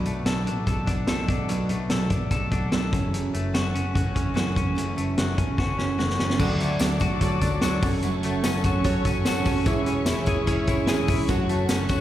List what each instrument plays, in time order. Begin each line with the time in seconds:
Already playing: clean electric guitar B2 A4
0.05 picked electric bass B1, steel-string acoustic guitar F#3 A3 D4, clean electric guitar A3, closed hi-hat
0.25 picked electric bass B1, steel-string acoustic guitar B2 F#3 A3 D4, clean electric guitar A4, snare, closed hi-hat
0.46 picked electric bass A1, steel-string acoustic guitar F#3 A3 D4, clean electric guitar D4, closed hi-hat
0.66 picked electric bass B1, steel-string acoustic guitar B2 F#3 A3 D4, clean electric guitar A4, kick, closed hi-hat
0.86 picked electric bass B1, steel-string acoustic guitar F#3 A3 D4, clean electric guitar D4, kick, closed hi-hat
1.07 picked electric bass B1, steel-string acoustic guitar B2 F#3 A3 D4, clean electric guitar A4, snare, closed hi-hat
1.28 picked electric bass B1, clean electric guitar D4, kick, closed hi-hat
1.48 picked electric bass B1, steel-string acoustic guitar B2 F#3 A3 D4, clean electric guitar B2, closed hi-hat
1.69 picked electric bass B1, steel-string acoustic guitar F#3 A3 D4, clean electric guitar A3, closed hi-hat
1.90 picked electric bass B1, steel-string acoustic guitar B2 F#3 A3 D4, clean electric guitar A4, snare, closed hi-hat
2.10 picked electric bass A1, steel-string acoustic guitar F#3 A3 D4, clean electric guitar D4, kick, closed hi-hat
2.31 picked electric bass B1, steel-string acoustic guitar B2 F#3 A3 D4, clean electric guitar A4, kick, closed hi-hat
2.50 picked electric bass B1, steel-string acoustic guitar F#3 A3 D4, clean electric guitar D4, kick, closed hi-hat
2.72 picked electric bass B1, steel-string acoustic guitar B2 F#3 A3 D4, clean electric guitar A4, snare, closed hi-hat
2.93 picked electric bass F#1, clean electric guitar F#2, steel-string acoustic guitar F#2 C#3 E3 A3 C#4, kick, closed hi-hat
3.14 clean electric guitar F#2, closed hi-hat
3.33 picked electric bass F#1, steel-string acoustic guitar E3 A3 C#4, clean electric guitar A3, closed hi-hat
3.53 picked electric bass F#1, steel-string acoustic guitar F#2 C#3 E3 A3 C#4, clean electric guitar F#4, snare, closed hi-hat
3.73 picked electric bass F#1, steel-string acoustic guitar E3 A3 C#4, clean electric guitar C#4, closed hi-hat
3.94 picked electric bass F#1, steel-string acoustic guitar C#3 E3 A3 C#4, clean electric guitar F#4, kick, closed hi-hat
4.14 picked electric bass F#1, steel-string acoustic guitar E3 A3 C#4, clean electric guitar C#4, kick, closed hi-hat
4.34 picked electric bass F#1, steel-string acoustic guitar F#2 C#3 E3 A3 C#4, clean electric guitar F#4, snare, closed hi-hat
4.56 picked electric bass F#1, clean electric guitar C#4, kick, closed hi-hat
4.75 picked electric bass F#1, steel-string acoustic guitar F#2 C#3 E3 A3 C#4, clean electric guitar F#2, closed hi-hat
4.96 picked electric bass F#1, steel-string acoustic guitar E3 A3 C#4, clean electric guitar A3, closed hi-hat
5.17 picked electric bass F#1, steel-string acoustic guitar F#2 C#3 E3 A3 C#4, clean electric guitar F#4, snare, closed hi-hat
5.37 picked electric bass E1, steel-string acoustic guitar E3 A3 C#4, clean electric guitar C#4, kick, closed hi-hat
5.57 picked electric bass F#1, steel-string acoustic guitar C#3 E3 A3 C#4, clean electric guitar F#4, kick, snare
5.77 picked electric bass F#1, steel-string acoustic guitar E3 A3 C#4, clean electric guitar C#4, snare
5.98 picked electric bass F#1, steel-string acoustic guitar F#2 C#3 E3 A3 C#4, clean electric guitar F#4, snare
6.10 snare
6.19 picked electric bass F#1, clean electric guitar C#4, snare
6.30 snare
6.38 picked electric bass D2, steel-string acoustic guitar D3 F#3 A3 D4, clean electric guitar D3, synth keys F#4 A4 D5, string section A4 D5 F#5 D6, kick, crash, tambourine
6.60 picked electric bass D2, clean electric guitar A3, synth keys F#4 A4 D5, closed hi-hat, tambourine
6.79 picked electric bass D2, steel-string acoustic guitar D3 F#3 A3 D4, clean electric guitar D4, synth keys F#4 A4 D5, snare, closed hi-hat, tambourine
7.00 picked electric bass D2, clean electric guitar F#4, synth keys F#4 A4 D5, kick, closed hi-hat, tambourine
7.20 picked electric bass D2, steel-string acoustic guitar D3 F#3 A3 D4, clean electric guitar F#3, synth keys F#4 A4 D5, kick, closed hi-hat, tambourine
7.41 picked electric bass D2, steel-string acoustic guitar F#3 A3 D4, clean electric guitar D4, synth keys F#4 A4 D5, kick, closed hi-hat, tambourine
7.61 picked electric bass D2, steel-string acoustic guitar D3 F#3 A3 D4, clean electric guitar F#4, synth keys F#4 A4 C#5, snare, closed hi-hat, tambourine
7.82 picked electric bass F#1, clean electric guitar F#2, steel-string acoustic guitar F#3 A3 C#4, synth keys F#4 A4 C#5, string section C#5 C#6, kick, open hi-hat, tambourine
8.02 steel-string acoustic guitar F#2 C#3 F#3 A3 C#4, clean electric guitar F#2, closed hi-hat, tambourine
8.23 picked electric bass F#1, clean electric guitar A3, synth keys F#4 A4 C#5, closed hi-hat, tambourine
8.43 picked electric bass F#1, steel-string acoustic guitar F#2 C#3 F#3 A3 C#4, clean electric guitar C#4, synth keys F#4 A4 C#5, snare, closed hi-hat, tambourine
8.64 picked electric bass F#1, synth keys F#4 A4 C#5, clean electric guitar F#4, kick, closed hi-hat, tambourine
8.83 picked electric bass F#1, steel-string acoustic guitar C#3 F#3 A3 C#4, clean electric guitar F#3, synth keys F#4 A4 C#5, kick, closed hi-hat, tambourine
9.03 picked electric bass F#1, steel-string acoustic guitar F#3 A3 C#4, clean electric guitar C#4, synth keys F#4 A4 C#5, kick, closed hi-hat, tambourine
9.25 picked electric bass F#1, steel-string acoustic guitar F#2 C#3 F#3 A3 C#4, synth keys F#4 A4 C#5, clean electric guitar F#4, snare, closed hi-hat, tambourine
9.44 picked electric bass F#1, steel-string acoustic guitar F#3 A3 C#4, clean electric guitar C#4, synth keys F#4 A4 C#5, kick, open hi-hat, tambourine
9.65 picked electric bass E1, steel-string acoustic guitar E3 G#3 C#4 E4, clean electric guitar E3, synth keys E4 G#4 C#5, string section G#4 E5, kick, closed hi-hat, tambourine
9.86 picked electric bass E1, clean electric guitar C#4, synth keys E4 G#4 C#5, closed hi-hat, tambourine
10.06 picked electric bass E1, steel-string acoustic guitar E3 G#3 C#4 E4, synth keys E4 G#4 C#5, clean electric guitar E4, snare, closed hi-hat, tambourine
10.26 picked electric bass E1, synth keys E4 G#4 C#5, clean electric guitar G#4, kick, closed hi-hat, tambourine
10.47 picked electric bass E1, steel-string acoustic guitar E3 G#3 C#4 E4, clean electric guitar C#4, synth keys E4 G#4 C#5, kick, closed hi-hat
10.67 picked electric bass E1, steel-string acoustic guitar G#3 C#4 E4, synth keys E4 G#4 C#5, clean electric guitar E4, kick, closed hi-hat, tambourine
10.87 picked electric bass E1, steel-string acoustic guitar E3 G#3 C#4 E4, synth keys E4 G#4 C#5, clean electric guitar G#4, snare, closed hi-hat, tambourine
11.07 picked electric bass E1, steel-string acoustic guitar G#3 C#4 E4, synth keys E4 G#4 C#5, clean electric guitar E4, kick, open hi-hat, tambourine
11.28 picked electric bass F#1, clean electric guitar F#2, steel-string acoustic guitar F#3 A3 C#4 F#4, synth keys F#4 A4 C#5, string section A4 F#5, kick, closed hi-hat, tambourine
11.49 picked electric bass F#1, clean electric guitar A3, synth keys F#4 A4 C#5, closed hi-hat, tambourine
11.69 picked electric bass F#1, steel-string acoustic guitar F#3 A3 C#4 F#4, clean electric guitar C#4, synth keys F#4 A4 C#5, snare, closed hi-hat, tambourine
11.89 picked electric bass F#1, clean electric guitar F#4, synth keys F#4 A4 C#5, kick, closed hi-hat, tambourine